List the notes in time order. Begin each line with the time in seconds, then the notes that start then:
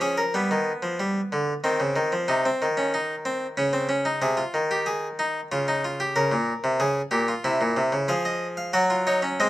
Already playing: F3
0.01 C#4 G#4
0.18 A#4
0.34 G3 B3
0.51 D#3
0.82 F3
1.00 G3
1.32 D3
1.64 D#3 C4
1.80 C#3
1.96 D#3
2.12 F3
2.28 C3 D#4
2.46 C4
2.62 D#3
2.77 C#4
2.94 D#4
3.25 C4
3.57 C#3 C#4
3.73 C4
3.89 C#4
4.05 D#4
4.22 C3 G#4
4.37 F4
4.54 D#3
4.71 G4
4.86 G#4
5.19 D#4
5.52 C#3 F4
5.68 D#4
5.85 F4
6.00 G4
6.16 C#3 A#4
6.32 A#2
6.64 C3
6.80 C#3 G#4
7.11 A#2 G4
7.28 F4
7.44 C3 E4
7.61 A#2
7.77 C3
7.92 C#3
8.08 F3 G#4 F5
8.25 D#5
8.57 F5
8.73 F#3 F#4 F#5
8.90 F4
9.07 D#4 C#5
9.22 C#4
9.40 G#3 C4 D#5